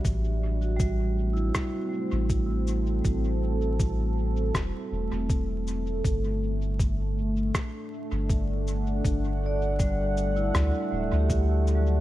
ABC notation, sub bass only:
X:1
M:4/4
L:1/16
Q:"Swing 16ths" 1/4=80
K:Ador
V:1 name="Sub bass" clef=bass
A,,,8 z3 A,,,4- A,,, | A,,,8 E,,, z E,,, E,,,4- E,,, | G,,,8 z3 G,,,4- G,,, | G,,,8 D,, z D,,, D,,4- D,, |]